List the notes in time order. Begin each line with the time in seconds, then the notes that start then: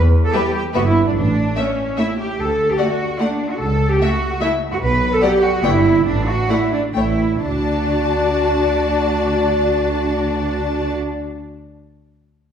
Already playing: E2
0.25 A4
0.33 G3 G4 B4 E5
0.55 G4
0.73 G1 B3 F#4 B4 E5
0.86 E4
1.07 D4
1.15 A1 D4
1.56 A3 C#4 E5
1.97 A3 E4 E5
2.19 G4
2.39 D2 A4
2.71 G4
2.78 A3 F#4 D5 F#5
3.19 A3 D4 D5 F#5
3.51 F#4
3.61 C#2 A4
3.92 G4
4.01 A3 F#4 E5
4.41 A3 E4 E5
4.72 F#4
4.82 B1 B4
5.12 A4
5.21 F#3 G4 D5 F#5
5.43 F#4
5.62 G1 B3 E4 D5 G5
6.04 A1 D4
6.27 F#4
6.48 A3 E4 D5 F#5
6.73 D4
6.94 A1 A3 E4 C#5 G5
7.44 D2 D4 F#4 D5 A5